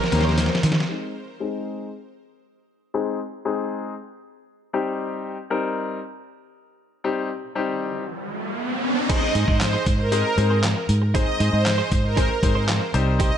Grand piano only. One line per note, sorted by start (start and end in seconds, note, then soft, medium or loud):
0.12 0.48 A#3 medium
0.12 0.48 C#4 medium
0.12 0.48 D#4 medium
0.12 0.48 G4 medium
0.12 0.48 A#4 medium
0.89 1.13 G#3 medium
0.89 1.13 C4 medium
0.89 1.13 D#4 medium
0.89 1.13 G#4 medium
1.40 1.88 G#3 medium
1.40 1.88 C4 medium
1.40 1.88 D#4 medium
1.40 1.88 G#4 medium
2.94 3.18 G#3 medium
2.94 3.18 C4 medium
2.94 3.18 D#4 medium
2.94 3.18 G#4 medium
3.45 3.93 G#3 medium
3.45 3.93 C4 medium
3.45 3.93 D#4 medium
3.45 3.93 G#4 medium
4.73 5.35 G3 medium
4.73 5.35 C4 medium
4.73 5.35 D#4 medium
4.73 5.35 G4 loud
5.50 5.98 G3 medium
5.50 5.98 C4 medium
5.50 5.98 D#4 medium
5.50 5.98 A#4 medium
7.04 7.28 G3 medium
7.04 7.28 C4 medium
7.04 7.28 D#4 medium
7.04 7.28 G4 medium
7.55 8.03 G3 medium
7.55 8.03 C4 medium
7.55 8.03 D#4 medium
7.55 8.03 G4 medium
9.09 9.57 G#3 medium
9.09 9.57 C4 medium
9.09 9.57 D#4 medium
9.09 9.57 G#4 medium
9.09 9.57 C5 medium
10.12 10.24 G#3 medium
10.12 10.24 C4 medium
10.12 10.24 D#4 medium
10.12 10.24 G#4 medium
10.12 10.24 D#5 medium
10.37 10.73 G#3 medium
10.37 10.73 C4 medium
10.37 10.73 D#4 medium
10.37 10.73 G#4 medium
10.37 10.73 C5 medium
11.14 11.62 G#3 medium
11.14 11.62 C4 medium
11.14 11.62 D#4 medium
11.14 11.62 G#4 medium
11.14 11.62 C5 medium
12.17 12.29 G#3 medium
12.17 12.29 C4 medium
12.17 12.29 D#4 medium
12.17 12.29 G#4 medium
12.17 12.29 C5 medium
12.43 12.78 G#3 medium
12.43 12.78 C4 medium
12.43 12.78 D#4 medium
12.43 12.78 G#4 medium
12.43 12.79 C5 medium
12.94 13.38 G3 loud
12.94 13.38 C4 medium
12.94 13.38 D#4 medium
12.94 13.38 G4 medium
12.94 13.38 C5 loud